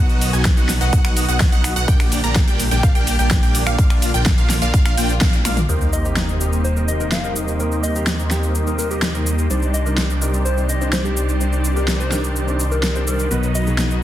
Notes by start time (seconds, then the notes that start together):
Already playing: B1 B2 D#3 F#3 B3 D#4 F#4 D#5 F#5
0.09 closed hi-hat, shaker
0.21 open hi-hat, shaker
0.33 B1 B3 D#4 F#4 D#5 G#5, closed hi-hat, shaker
0.45 kick, snare, closed hi-hat, shaker
0.57 B1 B3 D#4 F#4 D#5 F#5, closed hi-hat, shaker
0.69 snare, open hi-hat, shaker
0.81 B1 B3 D#4 F#4 D#5 F#5, closed hi-hat, shaker
0.93 B1 B3 D#4 F#4 D#5 F#5, kick, closed hi-hat, shaker
1.05 B1 B3 D#4 F#4 D#5 F#5, finger snap, closed hi-hat, shaker
1.17 open hi-hat, shaker
1.28 B1 B3 D#4 F#4 D#5 F#5, closed hi-hat, shaker
1.40 kick, snare, open hi-hat, shaker
1.52 B1 B3 D#4 F#4 D#5 F#5, closed hi-hat, shaker
1.64 finger snap, open hi-hat, shaker
1.76 B1 B3 D#4 F#4 D#5 F#5, closed hi-hat, shaker
1.88 A#1 A#2 D3 G3 A#3 D4 G4 D5 G5, kick, closed hi-hat, shaker
2.00 finger snap, open hi-hat, shaker
2.12 open hi-hat, shaker
2.24 A#1 A#3 D4 G4 D5 A#5, closed hi-hat, shaker
2.36 kick, snare, closed hi-hat, shaker
2.48 A#1 A#3 D4 G4 D5 G5, closed hi-hat, shaker
2.59 open hi-hat, shaker
2.71 A#1 A#3 D4 G4 D5 G5, closed hi-hat, shaker
2.83 A#1 A#3 D4 G4 D5 F5, kick, closed hi-hat, shaker
2.95 A#1 A#3 D4 G4 D5 G5, closed hi-hat, shaker
3.07 open hi-hat, shaker
3.19 A#1 A#3 D4 G4 D5 G5, closed hi-hat, shaker
3.31 kick, snare, closed hi-hat, shaker
3.43 A#1 A#3 D4 G4 D5 G5, closed hi-hat, shaker
3.55 open hi-hat, shaker
3.67 A#1 A#3 D4 G4 D5 F5, finger snap, shaker
3.78 A#1 F3 A#3 D4 F4 D5 F5, kick, closed hi-hat, shaker
3.90 finger snap, closed hi-hat, shaker
4.02 open hi-hat, shaker
4.14 A#1 A#3 D4 F4 D5 G5, closed hi-hat, shaker
4.26 kick, snare, closed hi-hat, shaker
4.38 A#1 A#3 D4 F4 D5 F5, closed hi-hat, shaker
4.50 snare, open hi-hat, shaker
4.62 A#1 A#3 D4 F4 D5 F5, closed hi-hat, shaker
4.74 A#1 A#3 D4 F4 D5 F5, kick, closed hi-hat, shaker
4.86 A#1 A#3 D4 F4 D5 F5, finger snap, closed hi-hat, shaker
4.97 A#1 A#3 D4 F4 D5 G5, open hi-hat, shaker
5.09 closed hi-hat, shaker
5.21 A#1 A#3 D4 F4 D5 F5, kick, snare, open hi-hat, shaker
5.33 closed hi-hat, shaker
5.45 A#1 A#3 D4 F4 D5 F5, finger snap, open hi-hat, high tom, shaker
5.57 closed hi-hat, mid tom, shaker
5.68 D#2 C3 D#3 G3 A#3 C4 D#4 G4 A#4 C5 D#5, sub drop, shaker
5.81 shaker
5.93 D#5, shaker
6.04 G3 C4 D#4 G4, shaker
6.16 snare, shaker
6.29 shaker
6.40 G3 C4 D#4 G4, shaker
6.53 shaker
6.64 C5, shaker
6.75 G3 C4 D#4 A#4, shaker
6.88 D#5, shaker
6.99 G3 C4 D#4 A#4, shaker
7.12 F5, snare, shaker
7.23 G3 C4 D#4 A#4, shaker
7.36 shaker
7.48 shaker
7.59 G3 C4 D#4 A#4, shaker
7.72 shaker
7.83 D#5, shaker
7.95 G3 C4 D#4 G4, shaker
8.07 snare, shaker
8.19 shaker
8.30 G3 C4 D#4 G4, snare, shaker
8.43 shaker
8.55 shaker
8.66 G3 C4 D#4 A#4, shaker
8.79 A#4, shaker
8.90 G3 C4 D#4 G4 A#4, shaker
9.02 snare, shaker
9.14 G3 C4 D#4 A#4, shaker
9.27 shaker
9.39 shaker
9.49 C2 C3 D#3 G3 D4 D#4 G4 C5 D5, shaker
9.62 shaker
9.74 D#5, shaker
9.85 C3 G3 D4 D#4 A#4, shaker
9.98 snare, shaker
10.10 shaker
10.21 C3 G3 D4 D#4 A#4, shaker
10.34 shaker
10.45 C5, shaker
10.56 C3 G3 D4 D#4 C5, shaker
10.69 D#5, shaker
10.80 C3 G3 D4 D#4 C5, shaker
10.93 C5, snare, shaker
11.04 C3 G3 D4 D#4 G4 C5, shaker
11.17 shaker
11.29 shaker
11.40 C3 G3 D4 D#4 C5, shaker
11.53 shaker
11.65 shaker
11.75 C3 G3 D4 D#4 G4 A#4, shaker
11.88 snare, shaker
12.00 C5, shaker
12.11 C3 G3 D4 D#4 A#4, snare, shaker
12.24 shaker
12.36 shaker
12.47 C3 G3 D4 D#4 C5, shaker
12.60 shaker
12.72 A#4, shaker
12.83 snare, shaker
12.94 C3 G3 D4 D#4 C5, shaker
13.07 A#4, shaker
13.19 shaker
13.30 B1 B2 F#3 B3 D#4 F#4 B4 D#5, shaker
13.43 shaker
13.55 D#5, shaker
13.66 B2 F#3 B3 D#4 G#4, shaker
13.78 snare, shaker
13.91 shaker